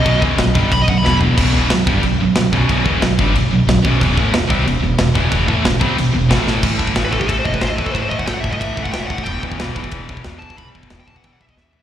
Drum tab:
CC |x---x---x-------|x---x---x---x---|x---x---x---x---|x---x---x---x---|
RD |----------------|----------------|----------------|----------------|
SD |----o-------o---|----o-------o---|----o-------o---|----o-------o---|
FT |--------------o-|----------------|----------------|----------------|
BD |o-o---o-o-o-----|o-----o-------o-|o-o---o-------o-|o-o---o-------o-|

CC |x---x---x---x---|x---------------|----------------|----------------|
RD |----------------|----b---b---b---|b---b---b---b---|b---b---b---b---|
SD |----o-------o-o-|----o-------o---|----o-------o---|----o-------o---|
FT |----------------|----------------|----------------|----------------|
BD |o-o---o---------|o-oo--ooo-oo--oo|o-oo--ooo-oo--oo|o-oo--ooo-oo--oo|

CC |----------------|
RD |b---b---b-------|
SD |----o-------o---|
FT |--------------o-|
BD |o-oo--ooo-oo----|